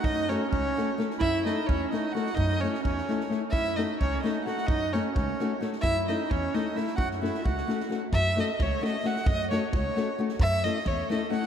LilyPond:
<<
  \new Staff \with { instrumentName = "Violin" } { \time 5/8 \tempo 4 = 130 dis''8 cis''8 cis''4 r8 | e''8 dis''8 cis''8 dis''8 fis''8 | dis''8 cis''8 cis''4 r8 | e''8 dis''8 cis''8 dis''8 fis''8 |
dis''8 cis''8 cis''4 r8 | e''8 dis''8 cis''8 dis''8 e''8 | fis''8 e''8 fis''4 r8 | e''8 dis''8 cis''8 dis''8 fis''8 |
dis''8 cis''8 cis''4 r8 | e''8 dis''8 cis''8 dis''8 fis''8 | }
  \new Staff \with { instrumentName = "Clarinet" } { \time 5/8 dis'8 cis'8 cis'4 r8 | e'8 dis'8 cis'8 dis'8 fis'8 | dis'8 cis'8 cis'4 r8 | e'8 dis'8 cis'8 dis'8 fis'8 |
dis'8 cis'8 cis'4 r8 | e'8 dis'8 cis'8 dis'8 e'8 | fis'8 e'8 fis'4 r8 | r2 r8 |
r2 r8 | r2 r8 | }
  \new Staff \with { instrumentName = "Nylon-string guitar" } { \time 5/8 r8 <a cis' fis' a'>8 r8 <a cis' fis' a'>8 <a cis' fis' a'>8 | r8 <a cis' e' a'>8 r8 <a cis' e' a'>8 <a cis' e' a'>8 | r8 <a cis' e' a'>8 r8 <a cis' e' a'>8 <a cis' e' a'>8 | r8 <a cis' fis' a'>8 r8 <a cis' fis' a'>8 <a cis' fis' a'>8 |
r8 <a cis' fis' a'>8 r8 <a cis' fis' a'>8 <a cis' fis' a'>8 | r8 <a cis' e' a'>8 r8 <a cis' e' a'>8 <a cis' e' a'>8 | r8 <a cis' fis' a'>8 r8 <a cis' fis' a'>8 <a cis' fis' a'>8 | r8 <a cis' fis' a'>8 r8 <a cis' fis' a'>8 <a cis' fis' a'>8 |
r8 <a cis' fis' a'>8 r8 <a cis' fis' a'>8 <a cis' fis' a'>8 | r8 <a cis' e' a'>8 r8 <a cis' e' a'>8 <a cis' e' a'>8 | }
  \new Staff \with { instrumentName = "Upright bass" } { \clef bass \time 5/8 fis,4 cis,8 r4 | fis,4 e,8 r4 | fis,4 e,8 r4 | fis,4 cis,8 r4 |
fis,4 cis,8 r4 | fis,4 e,8 r4 | fis,4 cis,8 r4 | fis,4 cis,8 r4 |
fis,4 cis,8 r4 | fis,4 e,8 r4 | }
  \new DrumStaff \with { instrumentName = "Drums" } \drummode { \time 5/8 bd8 sn8 bd8 sn8 sn16 sn16 | bd8 sn8 bd8 sn8 sn16 sn16 | bd16 sn16 sn16 sn16 bd16 sn16 sn16 sn16 sn8 | bd8 sn8 bd8 sn8 sn16 sn16 |
bd8 sn8 bd8 sn8 sn16 sn16 | bd8 sn8 bd8 sn8 sn16 sn16 | bd16 sn16 sn16 sn16 bd16 sn16 sn16 sn16 sn8 | bd8 sn8 bd8 sn8 sn16 sn16 |
bd8 sn8 bd8 sn8. sn16 | bd8 sn8 bd8 sn8 sn16 sn16 | }
>>